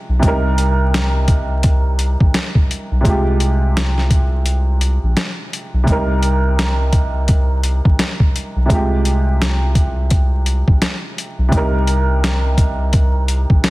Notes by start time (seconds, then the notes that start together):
Already playing: C3 G#3 F4 G4
0.09 B1
0.19 C2 C3 G3, kick, closed hi-hat
0.25 D#4 A#4
0.58 closed hi-hat
0.94 snare, closed hi-hat
1.28 kick, closed hi-hat
1.63 kick, closed hi-hat
1.99 closed hi-hat
2.20 A#1, kick
2.34 snare, closed hi-hat
2.55 kick
2.71 closed hi-hat
2.91 B1
3.01 C3 G#3
3.05 C2 F4, kick, closed hi-hat
3.09 G4
3.40 closed hi-hat
3.77 snare, closed hi-hat
3.98 snare
4.10 kick, closed hi-hat
4.46 closed hi-hat
4.81 closed hi-hat
5.03 A#1
5.17 snare, closed hi-hat
5.53 closed hi-hat
5.73 B1
5.84 C2 C3 G3, kick
5.88 D#4, closed hi-hat
5.92 A#4
6.23 closed hi-hat
6.59 snare, closed hi-hat
6.93 kick, closed hi-hat
7.28 kick, closed hi-hat
7.63 closed hi-hat
7.85 A#1, kick
7.99 snare, closed hi-hat
8.20 kick
8.36 closed hi-hat
8.56 B1
8.66 C3 G#3, kick
8.70 C2 F4, closed hi-hat
8.74 G4
9.05 closed hi-hat
9.42 snare, closed hi-hat
9.75 kick, closed hi-hat
10.11 kick, closed hi-hat
10.46 closed hi-hat
10.68 A#1, kick
10.82 snare, closed hi-hat
11.18 closed hi-hat
11.38 B1
11.49 C2 C3 G3, kick, closed hi-hat
11.54 D#4 A#4
11.88 closed hi-hat
12.24 snare, closed hi-hat
12.58 kick, closed hi-hat
12.93 kick, closed hi-hat
13.28 closed hi-hat
13.50 A#1, kick
13.64 snare, closed hi-hat